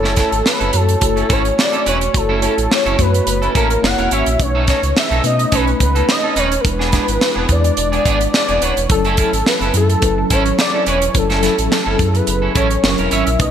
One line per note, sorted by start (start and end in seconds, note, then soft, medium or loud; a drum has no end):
0.00 0.23 F#1 medium
0.00 0.69 A3 medium
0.00 0.69 E4 medium
0.00 0.16 E4 medium
0.00 0.69 F#4 medium
0.00 0.18 A4 medium
0.00 0.16 A4 medium
0.00 0.70 C#5 medium
0.04 0.15 C#4 medium
0.04 snare soft
0.16 0.30 C#4 medium
0.16 0.31 E4 medium
0.16 0.30 A4 medium
0.16 0.49 A4 medium
0.16 kick medium
0.16 snare soft
0.16 closed hi-hat medium
0.32 0.42 G#1 medium
0.32 muted clean electric guitar stroke soft
0.32 closed hi-hat soft
0.44 0.77 B4 medium
0.44 muted clean electric guitar stroke soft
0.44 snare medium
0.60 0.71 F#1 medium
0.60 0.72 C#4 medium
0.60 0.72 E4 medium
0.60 0.72 A4 medium
0.60 closed hi-hat soft
0.73 0.96 F#2 loud
0.73 0.99 A3 medium
0.73 1.00 E4 medium
0.73 1.00 F#4 medium
0.73 1.34 A4 medium
0.73 1.00 C#5 medium
0.73 muted clean electric guitar stroke soft
0.73 closed hi-hat medium
0.88 muted clean electric guitar stroke soft
0.88 closed hi-hat medium
1.01 1.24 F#1 medium
1.01 2.08 A3 medium
1.01 2.08 E4 medium
1.01 2.08 F#4 medium
1.01 2.08 C#5 medium
1.01 muted clean electric guitar stroke soft
1.01 kick medium
1.01 closed hi-hat medium
1.16 1.28 C#4 soft
1.16 1.28 E4 soft
1.16 1.28 A4 medium
1.16 closed hi-hat soft
1.29 1.52 G#1 medium
1.29 1.47 C#4 medium
1.29 1.44 E4 medium
1.29 1.43 A4 medium
1.29 1.62 C#5 loud
1.29 kick medium
1.29 closed hi-hat medium
1.45 muted clean electric guitar stroke soft
1.45 closed hi-hat soft
1.57 1.87 D5 loud
1.57 muted clean electric guitar stroke soft
1.57 snare medium
1.73 1.84 C#4 soft
1.73 1.85 E4 soft
1.73 1.84 A4 medium
1.73 closed hi-hat soft
1.85 2.08 E1 medium
1.85 2.03 C#4 medium
1.85 2.01 E4 medium
1.85 2.01 B4 medium
1.85 2.18 C#5 medium
1.85 closed hi-hat medium
2.01 muted clean electric guitar stroke soft
2.01 closed hi-hat medium
2.13 2.48 F#1 loud
2.13 2.41 A3 medium
2.13 2.41 E4 medium
2.13 2.41 F#4 medium
2.13 2.44 A4 medium
2.13 2.41 C#5 medium
2.13 muted clean electric guitar stroke soft
2.13 kick loud
2.13 closed hi-hat medium
2.29 2.41 C#4 medium
2.29 2.42 E4 medium
2.29 2.42 A4 medium
2.42 2.95 A3 medium
2.42 2.56 C#4 medium
2.42 2.95 E4 medium
2.42 2.56 E4 medium
2.42 2.96 F#4 medium
2.42 2.56 A4 medium
2.42 2.74 A4 medium
2.42 2.96 C#5 medium
2.42 closed hi-hat medium
2.58 2.68 A1 medium
2.58 muted clean electric guitar stroke soft
2.58 closed hi-hat medium
2.70 3.03 C#5 loud
2.70 muted clean electric guitar stroke soft
2.70 snare loud
2.85 2.96 F#1 medium
2.85 2.97 C#4 medium
2.85 2.98 E4 medium
2.85 2.98 A4 medium
2.85 closed hi-hat soft
2.98 3.21 F#2 medium
2.98 3.83 A3 medium
2.98 3.81 E4 medium
2.98 3.82 F#4 medium
2.98 3.56 B4 loud
2.98 3.82 C#5 medium
2.98 muted clean electric guitar stroke soft
2.98 kick medium
2.98 closed hi-hat medium
3.14 muted clean electric guitar stroke soft
3.14 closed hi-hat soft
3.27 3.49 F#1 medium
3.27 muted clean electric guitar stroke soft
3.27 closed hi-hat medium
3.42 3.53 C#4 soft
3.42 3.54 E4 medium
3.42 3.53 A4 medium
3.42 closed hi-hat soft
3.55 3.77 A1 medium
3.55 3.72 C#4 medium
3.55 3.70 E4 medium
3.55 3.69 A4 medium
3.55 3.87 A#4 medium
3.55 kick medium
3.55 closed hi-hat medium
3.70 muted clean electric guitar stroke soft
3.70 closed hi-hat soft
3.82 3.95 F#1 loud
3.82 4.36 A#3 medium
3.82 4.36 E4 medium
3.82 4.36 F#4 medium
3.82 4.37 C#5 medium
3.82 4.14 F#5 loud
3.82 muted clean electric guitar stroke soft
3.82 snare medium
3.98 4.08 E1 medium
3.98 4.10 C#4 soft
3.98 4.10 E4 medium
3.98 4.10 A#4 medium
3.98 closed hi-hat soft
4.11 4.23 G#1 medium
4.11 4.28 C#4 medium
4.11 4.27 E4 medium
4.11 4.27 C#5 medium
4.11 4.43 E5 medium
4.11 closed hi-hat medium
4.26 4.37 A#1 medium
4.26 muted clean electric guitar stroke soft
4.26 closed hi-hat medium
4.39 4.74 B1 loud
4.39 5.19 A3 medium
4.39 5.19 C#4 medium
4.39 4.46 D4 soft
4.39 5.20 B4 medium
4.39 4.69 C#5 loud
4.39 muted clean electric guitar stroke soft
4.39 kick loud
4.39 closed hi-hat medium
4.46 5.23 D#4 medium
4.55 4.66 C#4 medium
4.55 4.67 D#4 medium
4.55 4.68 A4 medium
4.67 4.81 C#4 medium
4.67 4.82 D#4 medium
4.67 4.82 A4 medium
4.67 4.95 C#5 medium
4.67 kick medium
4.67 snare soft
4.67 closed hi-hat medium
4.83 4.93 C#2 medium
4.83 muted clean electric guitar stroke soft
4.83 closed hi-hat soft
4.96 5.24 E5 medium
4.96 muted clean electric guitar stroke soft
4.96 snare loud
5.11 5.21 B1 medium
5.11 5.23 C#4 medium
5.11 5.24 D#4 medium
5.11 5.24 A4 medium
5.11 closed hi-hat soft
5.23 5.46 B2 loud
5.23 5.50 A3 medium
5.23 5.50 C#4 medium
5.23 5.51 D#4 medium
5.23 5.51 B4 medium
5.23 5.56 D#5 loud
5.23 muted clean electric guitar stroke soft
5.23 closed hi-hat medium
5.39 muted clean electric guitar stroke soft
5.39 closed hi-hat soft
5.51 5.74 B1 medium
5.51 6.58 A3 medium
5.51 6.58 C#4 medium
5.51 5.69 C#4 medium
5.51 6.58 D#4 medium
5.51 5.67 D#4 medium
5.51 5.66 A4 medium
5.51 6.59 B4 medium
5.51 5.81 B4 medium
5.51 kick medium
5.51 closed hi-hat medium
5.67 muted clean electric guitar stroke soft
5.67 closed hi-hat soft
5.80 6.02 C#2 medium
5.80 6.13 B4 medium
5.80 muted clean electric guitar stroke soft
5.80 kick medium
5.80 closed hi-hat medium
5.95 6.07 C#4 soft
5.95 6.07 D#4 medium
5.95 6.07 A4 medium
5.95 closed hi-hat soft
6.08 6.40 D#5 loud
6.08 muted clean electric guitar stroke soft
6.08 snare loud
6.23 6.35 C#4 soft
6.23 6.35 D#4 medium
6.23 6.35 A4 medium
6.36 6.58 D#1 medium
6.36 6.53 C#4 medium
6.36 6.51 D#4 medium
6.36 6.51 B4 medium
6.36 6.62 C#5 medium
6.36 closed hi-hat medium
6.51 muted clean electric guitar stroke soft
6.51 closed hi-hat medium
6.60 6.91 G#3 medium
6.60 6.91 D4 medium
6.60 6.69 A#4 medium
6.60 muted clean electric guitar stroke soft
6.65 6.99 E1 loud
6.65 6.91 E4 medium
6.65 6.91 B4 medium
6.65 7.53 B4 medium
6.65 kick loud
6.65 closed hi-hat medium
6.79 6.91 B3 medium
6.79 6.92 D4 medium
6.79 6.92 G#4 medium
6.79 snare soft
6.92 7.46 G#3 medium
6.92 7.06 B3 medium
6.92 7.46 D4 medium
6.92 7.06 D4 medium
6.92 7.46 E4 medium
6.92 7.07 G#4 medium
6.92 7.46 B4 medium
6.92 kick medium
6.92 snare soft
6.92 closed hi-hat medium
7.08 7.18 G#1 medium
7.08 muted clean electric guitar stroke soft
7.08 closed hi-hat medium
7.20 muted clean electric guitar stroke soft
7.20 snare loud
7.36 7.46 E1 medium
7.36 7.47 B3 medium
7.36 7.48 D4 medium
7.36 7.48 G#4 medium
7.48 7.71 E2 loud
7.48 8.55 G#3 medium
7.48 8.56 D4 medium
7.48 8.56 E4 medium
7.48 8.56 B4 medium
7.48 8.35 D5 loud
7.48 kick medium
7.48 closed hi-hat medium
7.64 muted clean electric guitar stroke soft
7.64 closed hi-hat soft
7.77 7.99 E1 medium
7.77 muted clean electric guitar stroke soft
7.77 closed hi-hat medium
7.92 8.04 B3 soft
7.92 8.04 D4 medium
7.92 8.04 G#4 medium
7.92 closed hi-hat soft
8.05 8.28 G#1 loud
8.05 8.22 B3 medium
8.05 8.20 D4 medium
8.05 8.19 G#4 medium
8.05 kick medium
8.05 closed hi-hat medium
8.20 muted clean electric guitar stroke soft
8.20 closed hi-hat soft
8.34 8.65 D5 medium
8.34 muted clean electric guitar stroke soft
8.34 snare medium
8.48 8.59 E1 medium
8.48 8.60 B3 soft
8.48 8.60 D4 soft
8.48 8.60 G#4 medium
8.48 closed hi-hat soft
8.61 8.73 D1 medium
8.61 8.79 B3 medium
8.61 8.77 D4 medium
8.61 8.77 B4 medium
8.61 8.91 C#5 medium
8.61 closed hi-hat medium
8.77 8.87 E1 medium
8.77 muted clean electric guitar stroke soft
8.77 closed hi-hat medium
8.89 9.24 F#1 medium
8.89 9.69 F#3 medium
8.89 9.70 C#4 medium
8.89 9.70 E4 medium
8.89 9.70 A4 medium
8.89 9.17 A4 medium
8.89 muted clean electric guitar stroke soft
8.89 kick loud
8.89 closed hi-hat medium
9.05 9.17 C#4 medium
9.05 9.17 E4 medium
9.05 9.18 A4 medium
9.05 closed hi-hat soft
9.17 9.31 C#4 medium
9.17 9.32 E4 medium
9.17 9.32 A4 medium
9.17 9.50 A4 medium
9.17 kick medium
9.17 closed hi-hat medium
9.33 9.43 G#1 medium
9.33 muted clean electric guitar stroke soft
9.33 closed hi-hat medium
9.46 9.75 B4 medium
9.46 muted clean electric guitar stroke soft
9.46 snare medium
9.61 9.71 F#1 medium
9.61 9.73 C#4 medium
9.61 9.74 E4 medium
9.61 9.74 A4 medium
9.61 closed hi-hat soft
9.73 9.96 F#2 loud
9.73 10.00 F#3 medium
9.73 10.00 C#4 medium
9.73 10.01 E4 medium
9.73 10.01 A4 medium
9.73 muted clean electric guitar stroke soft
9.73 closed hi-hat medium
9.77 10.34 A4 loud
9.90 muted clean electric guitar stroke soft
9.90 closed hi-hat soft
10.01 10.25 F#1 medium
10.01 11.08 F#3 medium
10.01 11.09 C#4 medium
10.01 11.09 E4 medium
10.01 11.09 B4 medium
10.01 muted clean electric guitar stroke soft
10.01 kick medium
10.01 closed hi-hat medium
10.18 muted clean electric guitar stroke soft
10.30 10.53 G#1 medium
10.30 10.47 C#4 medium
10.30 10.46 E4 medium
10.30 10.45 A4 medium
10.30 10.60 C#5 medium
10.30 kick medium
10.30 closed hi-hat medium
10.46 muted clean electric guitar stroke soft
10.46 closed hi-hat soft
10.59 10.86 D5 medium
10.59 muted clean electric guitar stroke soft
10.59 snare loud
10.74 10.85 C#4 soft
10.74 10.86 E4 soft
10.74 10.85 A4 medium
10.86 11.09 E1 medium
10.86 11.04 C#4 medium
10.86 11.01 E4 medium
10.86 11.01 B4 medium
10.86 11.18 C#5 medium
10.86 closed hi-hat medium
11.01 muted clean electric guitar stroke soft
11.01 closed hi-hat medium
11.13 11.49 F#1 loud
11.13 11.41 F#3 medium
11.13 11.41 C#4 medium
11.13 11.41 E4 medium
11.13 11.42 A4 medium
11.13 11.44 A4 medium
11.13 muted clean electric guitar stroke soft
11.13 kick loud
11.13 closed hi-hat medium
11.30 11.41 C#4 medium
11.30 11.42 E4 medium
11.30 11.43 A4 medium
11.30 snare soft
11.30 closed hi-hat soft
11.42 11.96 F#3 medium
11.42 11.96 C#4 medium
11.42 11.56 C#4 medium
11.42 11.96 E4 medium
11.42 11.57 E4 medium
11.42 11.96 A4 medium
11.42 11.57 A4 medium
11.42 12.18 A4 medium
11.42 snare soft
11.42 closed hi-hat medium
11.58 11.68 A1 medium
11.58 muted clean electric guitar stroke soft
11.58 closed hi-hat medium
11.71 muted clean electric guitar stroke soft
11.71 snare loud
11.86 11.96 F#1 medium
11.86 11.98 C#4 medium
11.86 11.98 E4 medium
11.86 11.98 A4 medium
11.98 12.21 F#2 medium
11.98 12.82 F#3 medium
11.98 12.82 C#4 medium
11.98 12.83 E4 medium
11.98 12.07 G#4 medium
11.98 muted clean electric guitar stroke soft
11.98 kick medium
11.98 closed hi-hat medium
12.06 12.87 A4 medium
12.14 12.56 B4 medium
12.14 muted clean electric guitar stroke soft
12.14 closed hi-hat soft
12.27 12.50 F#1 medium
12.27 muted clean electric guitar stroke soft
12.27 closed hi-hat medium
12.42 12.54 C#4 soft
12.42 12.54 E4 soft
12.42 12.54 A4 medium
12.55 12.78 A1 medium
12.55 12.72 C#4 medium
12.55 12.70 E4 medium
12.55 12.69 A4 medium
12.55 12.83 C#5 medium
12.55 kick medium
12.55 closed hi-hat medium
12.70 muted clean electric guitar stroke soft
12.70 closed hi-hat soft
12.83 12.95 F#1 medium
12.83 13.37 F#3 medium
12.83 13.37 C#4 medium
12.83 13.37 E4 medium
12.83 13.37 A#4 medium
12.83 12.97 C#5 medium
12.83 muted clean electric guitar stroke soft
12.83 snare loud
12.98 13.09 E1 medium
12.98 13.10 C#4 soft
12.98 13.11 E4 medium
12.98 13.10 A#4 medium
12.98 closed hi-hat soft
13.11 13.24 G#1 medium
13.11 13.29 C#4 medium
13.11 13.26 E4 medium
13.11 13.26 C#5 medium
13.11 13.39 E5 medium
13.11 closed hi-hat medium
13.27 13.37 A#1 medium
13.27 muted clean electric guitar stroke soft
13.27 closed hi-hat medium
13.39 13.51 B1 loud
13.39 13.51 A3 medium
13.39 13.51 C#4 medium
13.39 13.51 D#4 medium
13.39 13.51 B4 medium
13.39 13.51 D#5 medium
13.39 muted clean electric guitar stroke soft
13.39 kick loud
13.39 closed hi-hat medium